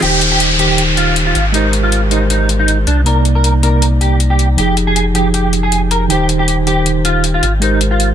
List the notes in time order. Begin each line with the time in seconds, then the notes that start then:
0.00 D#1 D#3 D#4 G4, closed hi-hat, downlifter
0.04 C5
0.21 closed hi-hat
0.32 G4
0.40 closed hi-hat
0.58 D#3 D#4 G4 C5, closed hi-hat
0.78 closed hi-hat
0.97 F4, closed hi-hat
1.16 closed hi-hat
1.27 F4
1.35 G#1, closed hi-hat
1.52 G#3 D#4 G4 A#4, closed hi-hat
1.56 C5
1.73 closed hi-hat
1.83 F4
1.92 closed hi-hat
2.10 G#3 D#4 G4 A#4 C5, closed hi-hat
2.30 D#4, closed hi-hat
2.49 closed hi-hat
2.59 D#4
2.68 closed hi-hat
2.87 C2 D4, closed hi-hat
3.04 C3 A#3 D#4 A#4 D5, closed hi-hat
3.25 closed hi-hat
3.35 A#4
3.44 closed hi-hat
3.62 C3 A#3 D#4 A#4 D5, closed hi-hat
3.82 closed hi-hat
4.01 G4, closed hi-hat
4.20 closed hi-hat
4.30 G4
4.39 closed hi-hat
4.56 F1 F3 D#4 G4, closed hi-hat
4.60 G#4
4.77 closed hi-hat
4.87 G#4
4.96 closed hi-hat
5.14 F3 D#4 G4 G#4, closed hi-hat
5.34 G4, closed hi-hat
5.53 closed hi-hat
5.63 G#4
5.72 closed hi-hat
5.91 A#4, closed hi-hat
6.08 D#1 D#3 D#4 G4, closed hi-hat
6.12 C5
6.29 closed hi-hat
6.39 G4
6.48 closed hi-hat
6.66 D#3 D#4 G4 C5, closed hi-hat
6.86 closed hi-hat
7.05 F4, closed hi-hat
7.24 closed hi-hat
7.34 F4
7.43 G#1, closed hi-hat
7.60 G#3 D#4 G4 A#4, closed hi-hat
7.64 C5
7.81 closed hi-hat
7.91 F4
8.00 closed hi-hat